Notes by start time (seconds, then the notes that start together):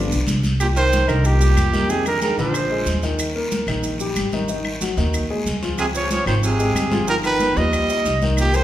Already playing: F3 B3 D4
0.10 B1, high conga, maracas
0.27 C2, high conga, short guiro, maracas
0.43 high conga, short guiro, maracas
0.60 A#2 G4, high conga, long guiro, claves, maracas
0.76 D#3 A#3 A#4 C5, high conga, maracas
0.92 high conga, short guiro, maracas
1.07 C2 D3 D#3 D#4 A#4, high conga, short guiro, claves, maracas
1.25 A#2 G4, high conga, long guiro, maracas
1.41 G3 G4, high conga, maracas
1.56 F2, high conga, short guiro, claves, maracas
1.72 D#3 D#4, high conga, short guiro, maracas
1.89 C3 D#3 D#4 G#4, high conga, long guiro, maracas
2.06 D3 A#4, high conga, claves, maracas
2.22 D#3 G#3 G#4 A#4, high conga, short guiro, maracas
2.38 A#1 D3 F3 D4 C5, high conga, short guiro, maracas
2.54 high conga, long guiro, claves, maracas
2.71 G#3 G#4, high conga
2.86 D#2, high conga, short guiro, maracas
3.03 D#3 D#4, short guiro, maracas
3.19 high conga, long guiro, claves, maracas
3.36 A#3 A#4, high conga
3.51 high conga, short guiro, maracas
3.67 A#1 D#3 D#4, high conga, short guiro, claves, maracas
3.83 high conga, long guiro, maracas
4.00 G3 G4, maracas
4.16 G#1, high conga, short guiro, claves, maracas
4.32 D#3 D#4, high conga, short guiro, maracas
4.48 D#3 D#4, high conga, long guiro, maracas
4.65 high conga, claves
4.81 F#3 F#4, high conga, short guiro, maracas
4.97 D#2 D#3 D#4, high conga, short guiro, maracas
5.14 high conga, long guiro, claves, maracas
5.30 G#3 G#4, high conga
5.46 C#2, high conga, short guiro, maracas
5.63 F3 F4, short guiro, maracas
5.78 C3 G#4, high conga, long guiro, claves, maracas
5.94 F3 C4 C5 C#5, high conga, maracas
6.11 F3 C#5, high conga, short guiro, maracas
6.26 G#1 D#3 F3 F4 C5, high conga, short guiro, claves, maracas
6.43 C3 G#4, high conga, long guiro, maracas
6.59 G#3 G#4, high conga, maracas
6.75 G1, high conga, short guiro, claves, maracas
6.91 F3 F4, high conga, short guiro, maracas
7.07 D#3 F3 F4 A#4, long guiro, maracas
7.24 D#3 B4, high conga, claves, maracas
7.40 B3 B4, high conga, short guiro, maracas
7.56 D#2 F3 G3 F4 D#5, high conga, short guiro, maracas
7.73 high conga, long guiro, claves, maracas
7.89 D#4 D#5, high conga, maracas
8.05 C2, high conga, short guiro, maracas
8.22 D#3 D#4, high conga, short guiro, maracas
8.37 A#2 G4, high conga, long guiro, claves, maracas
8.53 D#3 A#3 A#4 C5, high conga, maracas